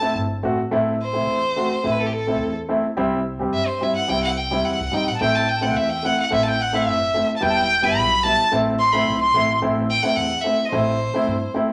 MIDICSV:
0, 0, Header, 1, 5, 480
1, 0, Start_track
1, 0, Key_signature, 0, "minor"
1, 0, Tempo, 561272
1, 621, Time_signature, 2, 2, 24, 8
1, 4937, Tempo, 550459
1, 10129, End_track
2, 0, Start_track
2, 0, Title_t, "Accordion"
2, 0, Program_c, 0, 21
2, 0, Note_on_c, 0, 81, 93
2, 107, Note_off_c, 0, 81, 0
2, 4402, Note_on_c, 0, 81, 52
2, 4455, Note_on_c, 0, 79, 84
2, 4458, Note_off_c, 0, 81, 0
2, 4678, Note_off_c, 0, 79, 0
2, 4691, Note_on_c, 0, 79, 68
2, 4744, Note_off_c, 0, 79, 0
2, 4752, Note_on_c, 0, 81, 63
2, 4799, Note_on_c, 0, 79, 63
2, 4806, Note_off_c, 0, 81, 0
2, 4870, Note_on_c, 0, 78, 54
2, 4922, Note_off_c, 0, 79, 0
2, 4929, Note_on_c, 0, 76, 70
2, 4930, Note_off_c, 0, 78, 0
2, 5173, Note_on_c, 0, 78, 73
2, 5182, Note_off_c, 0, 76, 0
2, 5422, Note_on_c, 0, 76, 95
2, 5425, Note_off_c, 0, 78, 0
2, 5540, Note_on_c, 0, 79, 73
2, 5545, Note_off_c, 0, 76, 0
2, 5665, Note_off_c, 0, 79, 0
2, 5666, Note_on_c, 0, 78, 74
2, 5776, Note_off_c, 0, 78, 0
2, 5781, Note_on_c, 0, 76, 84
2, 6230, Note_off_c, 0, 76, 0
2, 6374, Note_on_c, 0, 79, 92
2, 6436, Note_off_c, 0, 79, 0
2, 6440, Note_on_c, 0, 81, 78
2, 6481, Note_on_c, 0, 79, 99
2, 6495, Note_off_c, 0, 81, 0
2, 6746, Note_on_c, 0, 83, 106
2, 6747, Note_off_c, 0, 79, 0
2, 7099, Note_on_c, 0, 81, 77
2, 7118, Note_off_c, 0, 83, 0
2, 7326, Note_off_c, 0, 81, 0
2, 7582, Note_on_c, 0, 84, 99
2, 7913, Note_off_c, 0, 84, 0
2, 7926, Note_on_c, 0, 84, 90
2, 8269, Note_off_c, 0, 84, 0
2, 10129, End_track
3, 0, Start_track
3, 0, Title_t, "Violin"
3, 0, Program_c, 1, 40
3, 0, Note_on_c, 1, 81, 102
3, 143, Note_off_c, 1, 81, 0
3, 868, Note_on_c, 1, 72, 97
3, 1599, Note_on_c, 1, 71, 90
3, 1611, Note_off_c, 1, 72, 0
3, 1710, Note_on_c, 1, 69, 74
3, 1722, Note_off_c, 1, 71, 0
3, 1763, Note_on_c, 1, 67, 75
3, 1776, Note_off_c, 1, 69, 0
3, 1821, Note_on_c, 1, 69, 81
3, 1834, Note_off_c, 1, 67, 0
3, 2189, Note_off_c, 1, 69, 0
3, 3022, Note_on_c, 1, 76, 94
3, 3141, Note_on_c, 1, 72, 80
3, 3154, Note_off_c, 1, 76, 0
3, 3277, Note_on_c, 1, 76, 84
3, 3290, Note_off_c, 1, 72, 0
3, 3374, Note_off_c, 1, 76, 0
3, 3379, Note_on_c, 1, 78, 92
3, 3501, Note_on_c, 1, 79, 106
3, 3514, Note_off_c, 1, 78, 0
3, 3610, Note_off_c, 1, 79, 0
3, 3615, Note_on_c, 1, 78, 92
3, 3737, Note_on_c, 1, 79, 85
3, 3750, Note_off_c, 1, 78, 0
3, 3977, Note_on_c, 1, 78, 93
3, 3990, Note_off_c, 1, 79, 0
3, 4221, Note_on_c, 1, 79, 96
3, 4233, Note_off_c, 1, 78, 0
3, 4344, Note_on_c, 1, 78, 85
3, 4357, Note_off_c, 1, 79, 0
3, 4448, Note_off_c, 1, 78, 0
3, 4453, Note_on_c, 1, 79, 97
3, 4579, Note_on_c, 1, 81, 89
3, 4592, Note_off_c, 1, 79, 0
3, 4695, Note_on_c, 1, 79, 92
3, 4707, Note_off_c, 1, 81, 0
3, 4811, Note_on_c, 1, 78, 81
3, 4824, Note_off_c, 1, 79, 0
3, 4932, Note_on_c, 1, 76, 94
3, 4945, Note_off_c, 1, 78, 0
3, 5047, Note_on_c, 1, 79, 96
3, 5060, Note_off_c, 1, 76, 0
3, 5183, Note_on_c, 1, 78, 96
3, 5197, Note_off_c, 1, 79, 0
3, 5302, Note_off_c, 1, 78, 0
3, 5309, Note_on_c, 1, 78, 90
3, 5417, Note_off_c, 1, 78, 0
3, 5430, Note_on_c, 1, 76, 95
3, 5515, Note_on_c, 1, 81, 74
3, 5528, Note_off_c, 1, 76, 0
3, 5557, Note_on_c, 1, 79, 92
3, 5570, Note_off_c, 1, 81, 0
3, 5669, Note_on_c, 1, 78, 96
3, 5682, Note_off_c, 1, 79, 0
3, 5798, Note_on_c, 1, 76, 98
3, 5811, Note_off_c, 1, 78, 0
3, 6273, Note_off_c, 1, 76, 0
3, 6327, Note_on_c, 1, 81, 73
3, 6380, Note_on_c, 1, 79, 114
3, 6393, Note_off_c, 1, 81, 0
3, 6737, Note_on_c, 1, 83, 108
3, 6750, Note_off_c, 1, 79, 0
3, 7086, Note_on_c, 1, 81, 115
3, 7099, Note_off_c, 1, 83, 0
3, 7337, Note_off_c, 1, 81, 0
3, 7569, Note_on_c, 1, 84, 100
3, 7684, Note_on_c, 1, 83, 86
3, 7697, Note_off_c, 1, 84, 0
3, 7927, Note_off_c, 1, 83, 0
3, 7932, Note_on_c, 1, 84, 96
3, 8273, Note_off_c, 1, 84, 0
3, 8538, Note_on_c, 1, 79, 109
3, 8648, Note_on_c, 1, 78, 97
3, 8661, Note_off_c, 1, 79, 0
3, 8700, Note_on_c, 1, 79, 83
3, 8713, Note_off_c, 1, 78, 0
3, 8759, Note_on_c, 1, 78, 98
3, 8772, Note_off_c, 1, 79, 0
3, 8988, Note_on_c, 1, 76, 95
3, 9001, Note_off_c, 1, 78, 0
3, 9194, Note_on_c, 1, 75, 68
3, 9207, Note_off_c, 1, 76, 0
3, 9222, Note_on_c, 1, 72, 91
3, 9235, Note_off_c, 1, 75, 0
3, 9956, Note_off_c, 1, 72, 0
3, 10129, End_track
4, 0, Start_track
4, 0, Title_t, "Upright piano"
4, 0, Program_c, 2, 0
4, 5, Note_on_c, 2, 57, 57
4, 14, Note_on_c, 2, 60, 65
4, 22, Note_on_c, 2, 64, 79
4, 193, Note_off_c, 2, 57, 0
4, 197, Note_off_c, 2, 60, 0
4, 201, Note_off_c, 2, 64, 0
4, 369, Note_on_c, 2, 57, 72
4, 371, Note_on_c, 2, 60, 64
4, 384, Note_on_c, 2, 66, 89
4, 495, Note_off_c, 2, 57, 0
4, 496, Note_off_c, 2, 60, 0
4, 503, Note_off_c, 2, 66, 0
4, 610, Note_on_c, 2, 57, 89
4, 613, Note_on_c, 2, 60, 68
4, 622, Note_on_c, 2, 64, 94
4, 797, Note_off_c, 2, 57, 0
4, 798, Note_off_c, 2, 60, 0
4, 803, Note_off_c, 2, 64, 0
4, 967, Note_on_c, 2, 57, 58
4, 975, Note_on_c, 2, 60, 55
4, 981, Note_on_c, 2, 64, 66
4, 1156, Note_off_c, 2, 57, 0
4, 1159, Note_off_c, 2, 60, 0
4, 1163, Note_off_c, 2, 64, 0
4, 1336, Note_on_c, 2, 57, 64
4, 1342, Note_on_c, 2, 60, 48
4, 1349, Note_on_c, 2, 66, 72
4, 1461, Note_off_c, 2, 57, 0
4, 1464, Note_off_c, 2, 60, 0
4, 1467, Note_off_c, 2, 66, 0
4, 1569, Note_on_c, 2, 57, 67
4, 1577, Note_on_c, 2, 60, 58
4, 1584, Note_on_c, 2, 64, 83
4, 1758, Note_off_c, 2, 57, 0
4, 1761, Note_off_c, 2, 60, 0
4, 1765, Note_off_c, 2, 64, 0
4, 1942, Note_on_c, 2, 57, 66
4, 1950, Note_on_c, 2, 60, 68
4, 1958, Note_on_c, 2, 64, 73
4, 2124, Note_off_c, 2, 57, 0
4, 2128, Note_off_c, 2, 60, 0
4, 2133, Note_off_c, 2, 64, 0
4, 2297, Note_on_c, 2, 57, 74
4, 2301, Note_on_c, 2, 60, 69
4, 2311, Note_on_c, 2, 64, 87
4, 2422, Note_off_c, 2, 57, 0
4, 2424, Note_off_c, 2, 60, 0
4, 2429, Note_off_c, 2, 64, 0
4, 2537, Note_on_c, 2, 55, 94
4, 2544, Note_on_c, 2, 60, 94
4, 2546, Note_on_c, 2, 64, 92
4, 2722, Note_off_c, 2, 55, 0
4, 2725, Note_off_c, 2, 60, 0
4, 2726, Note_off_c, 2, 64, 0
4, 2903, Note_on_c, 2, 55, 68
4, 2911, Note_on_c, 2, 60, 62
4, 2919, Note_on_c, 2, 67, 64
4, 3084, Note_off_c, 2, 55, 0
4, 3088, Note_off_c, 2, 60, 0
4, 3092, Note_off_c, 2, 67, 0
4, 3257, Note_on_c, 2, 55, 62
4, 3265, Note_on_c, 2, 60, 55
4, 3271, Note_on_c, 2, 64, 75
4, 3381, Note_off_c, 2, 55, 0
4, 3385, Note_off_c, 2, 60, 0
4, 3388, Note_off_c, 2, 64, 0
4, 3488, Note_on_c, 2, 55, 66
4, 3499, Note_on_c, 2, 60, 66
4, 3506, Note_on_c, 2, 64, 73
4, 3676, Note_off_c, 2, 55, 0
4, 3681, Note_off_c, 2, 60, 0
4, 3685, Note_off_c, 2, 64, 0
4, 3857, Note_on_c, 2, 55, 74
4, 3863, Note_on_c, 2, 60, 63
4, 3872, Note_on_c, 2, 64, 76
4, 4039, Note_off_c, 2, 55, 0
4, 4042, Note_off_c, 2, 60, 0
4, 4046, Note_off_c, 2, 64, 0
4, 4205, Note_on_c, 2, 55, 66
4, 4220, Note_on_c, 2, 60, 51
4, 4223, Note_on_c, 2, 63, 63
4, 4332, Note_off_c, 2, 55, 0
4, 4340, Note_off_c, 2, 60, 0
4, 4341, Note_off_c, 2, 63, 0
4, 4455, Note_on_c, 2, 57, 72
4, 4460, Note_on_c, 2, 60, 67
4, 4466, Note_on_c, 2, 64, 78
4, 4636, Note_off_c, 2, 57, 0
4, 4638, Note_off_c, 2, 60, 0
4, 4641, Note_off_c, 2, 64, 0
4, 4799, Note_on_c, 2, 57, 69
4, 4806, Note_on_c, 2, 60, 62
4, 4813, Note_on_c, 2, 64, 71
4, 4987, Note_off_c, 2, 57, 0
4, 4990, Note_off_c, 2, 60, 0
4, 4994, Note_off_c, 2, 64, 0
4, 5160, Note_on_c, 2, 57, 56
4, 5174, Note_on_c, 2, 60, 51
4, 5180, Note_on_c, 2, 64, 68
4, 5290, Note_off_c, 2, 57, 0
4, 5297, Note_off_c, 2, 60, 0
4, 5300, Note_off_c, 2, 64, 0
4, 5401, Note_on_c, 2, 57, 71
4, 5408, Note_on_c, 2, 60, 70
4, 5417, Note_on_c, 2, 64, 84
4, 5592, Note_off_c, 2, 57, 0
4, 5595, Note_off_c, 2, 60, 0
4, 5600, Note_off_c, 2, 64, 0
4, 5770, Note_on_c, 2, 57, 64
4, 5777, Note_on_c, 2, 60, 68
4, 5781, Note_on_c, 2, 64, 83
4, 5957, Note_off_c, 2, 57, 0
4, 5961, Note_off_c, 2, 60, 0
4, 5963, Note_off_c, 2, 64, 0
4, 6132, Note_on_c, 2, 57, 64
4, 6142, Note_on_c, 2, 60, 55
4, 6149, Note_on_c, 2, 64, 59
4, 6258, Note_off_c, 2, 57, 0
4, 6264, Note_off_c, 2, 60, 0
4, 6267, Note_off_c, 2, 64, 0
4, 6360, Note_on_c, 2, 55, 72
4, 6369, Note_on_c, 2, 59, 71
4, 6377, Note_on_c, 2, 64, 84
4, 6553, Note_off_c, 2, 55, 0
4, 6558, Note_off_c, 2, 59, 0
4, 6562, Note_off_c, 2, 64, 0
4, 6724, Note_on_c, 2, 55, 64
4, 6731, Note_on_c, 2, 59, 70
4, 6743, Note_on_c, 2, 64, 80
4, 6916, Note_off_c, 2, 55, 0
4, 6919, Note_off_c, 2, 59, 0
4, 6925, Note_off_c, 2, 64, 0
4, 7082, Note_on_c, 2, 55, 59
4, 7091, Note_on_c, 2, 59, 52
4, 7103, Note_on_c, 2, 64, 70
4, 7215, Note_off_c, 2, 55, 0
4, 7219, Note_off_c, 2, 59, 0
4, 7225, Note_off_c, 2, 64, 0
4, 7328, Note_on_c, 2, 57, 77
4, 7339, Note_on_c, 2, 60, 76
4, 7345, Note_on_c, 2, 64, 83
4, 7518, Note_off_c, 2, 57, 0
4, 7523, Note_off_c, 2, 60, 0
4, 7526, Note_off_c, 2, 64, 0
4, 7689, Note_on_c, 2, 57, 71
4, 7705, Note_on_c, 2, 60, 65
4, 7710, Note_on_c, 2, 64, 78
4, 7878, Note_off_c, 2, 57, 0
4, 7886, Note_off_c, 2, 60, 0
4, 7888, Note_off_c, 2, 64, 0
4, 8049, Note_on_c, 2, 57, 64
4, 8062, Note_on_c, 2, 60, 50
4, 8068, Note_on_c, 2, 64, 76
4, 8177, Note_off_c, 2, 57, 0
4, 8184, Note_off_c, 2, 60, 0
4, 8187, Note_off_c, 2, 64, 0
4, 8290, Note_on_c, 2, 57, 75
4, 8294, Note_on_c, 2, 60, 74
4, 8307, Note_on_c, 2, 64, 91
4, 8477, Note_off_c, 2, 57, 0
4, 8479, Note_off_c, 2, 60, 0
4, 8486, Note_off_c, 2, 64, 0
4, 8649, Note_on_c, 2, 57, 67
4, 8657, Note_on_c, 2, 60, 61
4, 8663, Note_on_c, 2, 64, 69
4, 8836, Note_off_c, 2, 57, 0
4, 8840, Note_off_c, 2, 60, 0
4, 8843, Note_off_c, 2, 64, 0
4, 9008, Note_on_c, 2, 57, 60
4, 9018, Note_on_c, 2, 60, 56
4, 9022, Note_on_c, 2, 64, 63
4, 9135, Note_off_c, 2, 57, 0
4, 9140, Note_off_c, 2, 60, 0
4, 9142, Note_off_c, 2, 64, 0
4, 9251, Note_on_c, 2, 57, 73
4, 9257, Note_on_c, 2, 60, 64
4, 9266, Note_on_c, 2, 64, 84
4, 9435, Note_off_c, 2, 57, 0
4, 9438, Note_off_c, 2, 60, 0
4, 9442, Note_off_c, 2, 64, 0
4, 9615, Note_on_c, 2, 57, 68
4, 9621, Note_on_c, 2, 60, 63
4, 9632, Note_on_c, 2, 64, 87
4, 9796, Note_off_c, 2, 57, 0
4, 9799, Note_off_c, 2, 60, 0
4, 9804, Note_off_c, 2, 64, 0
4, 9967, Note_on_c, 2, 57, 71
4, 9970, Note_on_c, 2, 60, 74
4, 9982, Note_on_c, 2, 64, 87
4, 10091, Note_off_c, 2, 57, 0
4, 10092, Note_off_c, 2, 60, 0
4, 10098, Note_off_c, 2, 64, 0
4, 10129, End_track
5, 0, Start_track
5, 0, Title_t, "Upright bass"
5, 0, Program_c, 3, 32
5, 0, Note_on_c, 3, 30, 70
5, 107, Note_off_c, 3, 30, 0
5, 130, Note_on_c, 3, 31, 96
5, 351, Note_off_c, 3, 31, 0
5, 369, Note_on_c, 3, 33, 84
5, 591, Note_off_c, 3, 33, 0
5, 612, Note_on_c, 3, 33, 84
5, 1094, Note_off_c, 3, 33, 0
5, 1094, Note_on_c, 3, 40, 93
5, 1386, Note_off_c, 3, 40, 0
5, 1575, Note_on_c, 3, 33, 90
5, 2058, Note_off_c, 3, 33, 0
5, 2058, Note_on_c, 3, 40, 111
5, 2349, Note_off_c, 3, 40, 0
5, 2539, Note_on_c, 3, 36, 99
5, 3021, Note_off_c, 3, 36, 0
5, 3021, Note_on_c, 3, 43, 107
5, 3310, Note_off_c, 3, 43, 0
5, 3502, Note_on_c, 3, 36, 86
5, 3976, Note_off_c, 3, 36, 0
5, 3976, Note_on_c, 3, 40, 104
5, 4050, Note_off_c, 3, 40, 0
5, 4094, Note_on_c, 3, 36, 90
5, 4205, Note_off_c, 3, 36, 0
5, 4217, Note_on_c, 3, 35, 73
5, 4326, Note_off_c, 3, 35, 0
5, 4333, Note_on_c, 3, 33, 71
5, 4444, Note_off_c, 3, 33, 0
5, 4453, Note_on_c, 3, 33, 98
5, 4931, Note_off_c, 3, 33, 0
5, 4931, Note_on_c, 3, 40, 102
5, 5223, Note_off_c, 3, 40, 0
5, 5417, Note_on_c, 3, 33, 106
5, 5901, Note_off_c, 3, 33, 0
5, 5901, Note_on_c, 3, 30, 116
5, 6191, Note_off_c, 3, 30, 0
5, 6381, Note_on_c, 3, 28, 107
5, 6860, Note_off_c, 3, 28, 0
5, 6860, Note_on_c, 3, 35, 109
5, 7151, Note_off_c, 3, 35, 0
5, 7335, Note_on_c, 3, 33, 89
5, 7811, Note_off_c, 3, 33, 0
5, 7816, Note_on_c, 3, 35, 98
5, 8037, Note_off_c, 3, 35, 0
5, 8056, Note_on_c, 3, 33, 101
5, 8276, Note_off_c, 3, 33, 0
5, 8299, Note_on_c, 3, 33, 100
5, 8588, Note_off_c, 3, 33, 0
5, 8771, Note_on_c, 3, 40, 96
5, 8918, Note_off_c, 3, 40, 0
5, 9255, Note_on_c, 3, 33, 116
5, 9542, Note_off_c, 3, 33, 0
5, 9732, Note_on_c, 3, 43, 103
5, 9877, Note_off_c, 3, 43, 0
5, 10129, End_track
0, 0, End_of_file